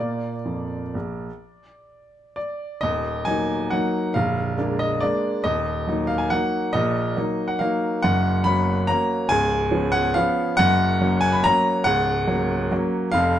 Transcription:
0.00 0.31 A#2 soft
0.00 0.36 A#3 soft
0.00 0.36 F4 soft
0.00 2.34 D5 medium
0.45 0.80 F2 soft
0.95 1.28 A#1 soft
2.36 2.83 D5 medium
2.81 3.25 D#1 medium
2.81 3.25 D#2 medium
2.81 3.26 D#5 medium
3.25 3.68 F#3 soft
3.25 3.68 A#3 soft
3.25 3.69 D#4 soft
3.25 3.71 G#5 medium
3.70 4.12 F#3 soft
3.70 4.12 A#3 soft
3.70 4.12 D#4 medium
3.70 4.15 F#5 medium
4.14 4.57 A#0 medium
4.14 4.57 A#1 medium
4.14 4.79 F5 medium
4.57 4.98 G#3 soft
4.57 4.98 A#3 soft
4.57 4.98 D4 medium
4.79 5.02 D#5 medium
5.01 5.41 G#3 soft
5.01 5.41 A#3 soft
5.01 5.41 D4 soft
5.01 5.44 D5 medium
5.44 5.86 D#1 medium
5.44 5.86 D#2 medium
5.44 6.08 D#5 medium
5.87 6.26 F#3 soft
5.87 6.27 A#3 soft
5.87 6.27 D#4 soft
6.07 6.19 F5 medium
6.18 6.30 G#5 medium
6.30 6.70 F#3 soft
6.30 6.70 A#3 soft
6.30 6.70 D#4 medium
6.30 6.73 F#5 medium
6.73 7.15 A#1 medium
6.73 7.15 A#2 medium
6.73 7.48 D#5 medium
7.17 7.56 F#3 soft
7.17 7.56 A#3 soft
7.17 7.57 D#4 soft
7.48 7.59 F#5 medium
7.59 7.99 F#3 soft
7.59 7.99 A#3 medium
7.59 7.99 D#4 medium
7.59 8.02 F5 medium
8.02 8.44 F#1 medium
8.02 8.44 F#2 medium
8.02 8.45 F#5 loud
8.44 8.84 F#3 medium
8.44 8.84 A#3 soft
8.44 8.85 C#4 medium
8.44 8.88 B5 loud
8.87 9.26 F#3 medium
8.87 9.26 A#3 medium
8.87 9.27 C#4 medium
8.87 9.29 A#5 loud
9.29 9.71 C#1 medium
9.29 9.70 C#2 medium
9.29 9.93 G#5 loud
9.71 10.11 F3 medium
9.71 10.11 B3 soft
9.71 10.11 C#4 medium
9.92 10.14 F#5 loud
10.14 10.54 F3 medium
10.14 10.54 B3 medium
10.14 10.54 C#4 medium
10.14 10.57 F5 loud
10.57 10.99 F#1 medium
10.57 10.99 F#2 medium
10.57 11.21 F#5 loud
11.01 11.40 F#3 medium
11.01 11.40 A#3 medium
11.01 11.40 C#4 medium
11.21 11.32 G#5 loud
11.32 11.43 B5 medium
11.44 11.83 F#3 medium
11.44 11.83 A#3 medium
11.44 11.83 C#4 medium
11.44 11.86 A#5 loud
11.84 12.26 C#1 medium
11.84 12.26 C#2 medium
11.84 12.48 F#5 loud
12.27 12.67 F#3 medium
12.27 12.67 A#3 medium
12.27 12.67 C#4 medium
12.71 13.09 F#3 medium
12.71 13.09 A#3 medium
12.71 13.09 C#4 medium
13.12 13.39 F1 medium
13.12 13.39 F2 medium
13.12 13.39 F5 loud

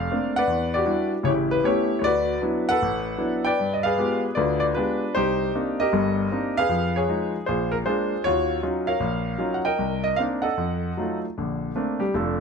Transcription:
0.00 0.33 A4 medium
0.00 0.34 D5 medium
0.00 0.32 F5 loud
0.11 0.38 A3 soft
0.11 0.38 A#3 soft
0.11 0.38 C4 soft
0.11 0.39 D4 medium
0.36 1.10 B4 medium
0.36 0.72 D5 medium
0.36 0.76 F#5 loud
0.48 0.82 E2 medium
0.74 0.85 F#4 medium
0.74 1.23 G4 medium
0.74 1.10 D5 medium
0.86 1.14 G3 medium
0.86 1.13 D4 soft
0.86 1.14 E4 soft
0.86 1.14 F#4 medium
1.23 1.58 A1 medium
1.23 1.58 C#3 medium
1.23 1.66 E4 medium
1.23 1.31 C#5 medium
1.28 1.63 G4 medium
1.51 1.65 B4 medium
1.64 1.91 A3 soft
1.64 1.91 B3 soft
1.64 1.92 C#4 soft
1.64 2.02 E4 medium
1.64 1.66 G4 medium
1.64 2.02 G4 medium
1.64 1.97 C#5 medium
1.99 2.36 D2 medium
1.99 2.04 C#5 medium
2.04 2.78 F#4 medium
2.04 2.69 B4 medium
2.04 2.40 D5 loud
2.42 2.69 F#3 soft
2.42 2.69 B3 soft
2.42 2.69 D4 soft
2.42 2.69 E4 medium
2.69 3.43 A4 medium
2.69 3.43 B4 medium
2.69 3.42 F#5 loud
2.82 3.15 A1 medium
3.18 3.46 F#3 soft
3.18 3.46 B3 soft
3.18 3.46 D4 soft
3.18 3.46 E4 soft
3.45 3.84 B4 medium
3.45 4.19 D5 medium
3.45 3.72 G5 medium
3.59 3.93 G2 medium
3.73 3.83 D#5 medium
3.83 4.59 G#4 medium
3.83 4.35 B4 medium
3.83 4.20 F5 medium
3.98 4.24 G#3 soft
3.98 4.25 B3 soft
3.98 4.25 F4 soft
3.98 4.25 G4 medium
4.35 4.71 D2 medium
4.35 4.70 D3 medium
4.35 4.74 F4 medium
4.35 4.73 B4 medium
4.35 4.58 D5 medium
4.60 4.65 D5 medium
4.75 5.03 G#3 soft
4.75 5.03 B3 soft
4.75 5.12 D4 medium
4.75 5.12 F4 medium
4.75 5.03 G4 soft
4.75 5.15 B4 medium
5.15 5.49 C2 medium
5.15 5.54 D#4 medium
5.15 5.80 G4 medium
5.15 5.51 C5 medium
5.55 5.81 A#3 soft
5.55 5.82 C4 soft
5.55 5.81 D4 soft
5.55 5.81 D#4 medium
5.80 6.54 G4 medium
5.80 6.54 A#4 medium
5.80 6.60 D#5 medium
5.92 6.26 G1 medium
5.92 6.26 G2 medium
6.32 6.59 A#3 soft
6.32 6.59 C4 soft
6.32 6.59 D4 soft
6.32 6.59 D#4 medium
6.57 6.96 G#4 medium
6.57 7.31 B4 medium
6.57 6.97 F5 loud
6.69 7.03 F2 soft
6.69 7.03 F3 medium
6.96 7.44 G#4 medium
6.96 7.32 C#5 medium
7.09 7.36 F3 soft
7.09 7.35 G#3 soft
7.09 7.36 D#4 medium
7.46 7.81 A#1 medium
7.46 7.85 F4 medium
7.46 7.85 G#4 medium
7.46 7.73 C5 medium
7.72 7.77 A#4 medium
7.85 8.12 G#3 soft
7.85 8.12 A#3 soft
7.85 8.13 D4 medium
7.85 8.22 F4 medium
7.85 8.22 G#4 medium
7.85 8.22 C5 medium
8.24 8.59 D#2 medium
8.24 8.62 F4 medium
8.24 8.98 F#4 medium
8.24 8.60 C#5 loud
8.63 8.89 F#3 soft
8.63 8.90 C#4 soft
8.63 8.90 D#4 soft
8.63 8.90 F4 medium
8.87 9.61 A#4 medium
8.87 9.61 C#5 medium
8.87 9.58 F5 medium
9.00 9.34 A#1 medium
9.38 9.66 F#3 medium
9.38 9.66 C#4 soft
9.38 9.66 D#4 soft
9.38 9.67 F4 soft
9.54 9.64 F#5 medium
9.65 10.39 A#4 medium
9.65 10.02 D#5 medium
9.65 10.05 G5 medium
9.78 10.12 C2 medium
10.04 10.16 D#5 medium
10.16 10.45 A#3 soft
10.16 10.45 C4 soft
10.16 10.45 D4 medium
10.16 10.46 D#4 soft
10.16 10.22 F5 medium
10.42 11.17 A4 medium
10.42 11.17 D#5 medium
10.42 11.17 F#5 medium
10.57 10.91 F2 medium
10.97 11.24 F#3 soft
10.97 11.24 A3 soft
10.97 11.24 D#4 soft
10.97 11.25 F4 soft
11.38 11.70 A#1 soft
11.38 11.70 D3 soft
11.76 12.02 A3 soft
11.76 12.02 A#3 soft
11.76 12.02 C4 soft
11.76 12.02 D4 soft
11.99 12.12 G3 medium
11.99 12.12 G4 medium
12.14 12.40 F1 medium
12.14 12.40 A3 soft
12.14 12.40 D4 soft
12.14 12.40 F4 soft
12.14 12.40 A4 medium

